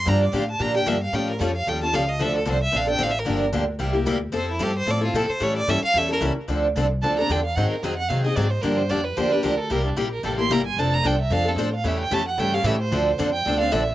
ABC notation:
X:1
M:4/4
L:1/8
Q:"Swing" 1/4=224
K:Dm
V:1 name="Violin"
b d f a b g e f | g B ^c ^e g a e _e | e A c e f g (3f e B- | B z6 z |
c E G c d F A c | ^c d e f e B z2 | z8 | z8 |
z8 | z8 | z8 | z8 |
z8 |]
V:2 name="Violin"
z8 | z8 | z8 | z8 |
z8 | z8 | z4 a b g f | ^f B ^d f ^e d =d ^B |
B c d =B c B _B A | B D G B A c' b ^g | a b g e f A c f | e g a ^f g =f e c- |
c2 z g2 f e2 |]
V:3 name="Steel-string acoustic guitar"
[D,F,B,DG] z [D,F,B,DG] z [D,F,B,DG] [B,DG] [D,F,B,DG] z | [^E,G,^C^EA] z [E,G,CEA] z [E,G,CEA] [CEA] [E,G,CEA] z | [D,F,CDA] z [D,F,CDA] z [D,F,CDA] [CDA] [D,F,CDA] z | [D,F,B,DG] z [D,F,B,DG] z [C,G,B,EG] [B,EG] [C,G,B,EG] z |
[F,CEA] z [F,CEA] z [F,CEA] [CEA] [F,CEA] z | [E,G,^CEA] z [E,G,CEA] z [E,G,CEA] [CEA] [E,G,CEA] z | [D,F,CDA] z [D,F,CDA] z [D,F,CDA] [CDA] [D,F,CDA] z | [^D,^F,^B,^D^G] z [D,F,B,DG] z [D,F,B,DG] [B,DG] [D,F,B,DG] z |
[D,F,B,DG] z [D,F,B,DG] z [D,F,B,DG] [B,DG] [D,F,B,DG] z | [C,G,B,EG] z [C,G,B,EG] z [C,G,B,EG] [B,EG] [C,G,B,EG] z | [F,CDA] z [F,CDA] z [F,CDA] [CDA] [F,CDA] z | [^C,E,A,^CG] z [C,E,A,CG] z [C,E,A,CG] [A,CG] [C,E,A,CG] z |
[D,F,CDA] z [D,F,CDA] z [D,F,CDA] [CDA] [D,F,CDA] z |]
V:4 name="Steel-string acoustic guitar"
[D,F,B,DG] z [D,F,B,DG] z [D,F,B,DG] z [D,F,B,DG] z | [^E,G,^CGA] z [E,G,CGA] z [E,G,CGA] z [E,G,CGA] z | [D,F,CDA] z [D,F,CDA] z [D,F,CDA] z [D,F,CDA] z | [D,F,B,DG] z [D,F,B,DG] z [C,G,B,EG] z [C,G,B,EG] z |
[F,A,CEA] z [F,A,CEA] z [F,A,CEA] z [F,A,CEA] z | [E,G,^CEA] z [E,G,CEA] z [E,G,CEA] z [E,G,CEA] z | [D,F,CDA] z [D,F,CDA] z [D,F,CDA] z [D,F,CDA] z | [^D,^F,^B,^D^G] z [D,F,B,DG] z [D,F,B,DG] z [D,F,B,DG] z |
[D,F,B,DG] z [D,F,B,DG] z [D,F,B,DG] z [D,F,B,DG] z | [C,G,B,EG] z [C,G,B,EG] z [C,G,B,EG] z [C,G,B,EG] z | [F,CDA] z [F,CDA] z [F,CDA] z [F,CDA] z | [E,G,^CEA] z [E,G,CEA] z [E,G,CEA] z [E,G,CEA] z |
[D,F,CDA] z [D,F,CDA] z [D,F,CDA] z [D,F,CDA] z |]
V:5 name="Upright bass" clef=bass
G,,2 A,,2 B,,2 G,,2 | A,,2 ^E,,2 _E,,2 ^C,,2 | D,,2 C,,2 B,,,2 A,,,2 | G,,,2 D,,2 C,,2 D,,2 |
F,,2 G,,2 A,,2 B,, z | A,,2 G,, z E,,2 ^C,, z | D,,2 C,,2 D,,2 E,,2 | ^G,, z ^E,,2 ^B,,2 G,,2 |
G,,2 F,,2 E,,2 D,,2 | C,,2 B,,,2 A,,,2 G,,,2 | F,,,2 C,,2 F,,2 A,,2 | E,,2 F,,2 G,,2 A,,2 |
D,,2 F,,2 D,,2 B,,,2 |]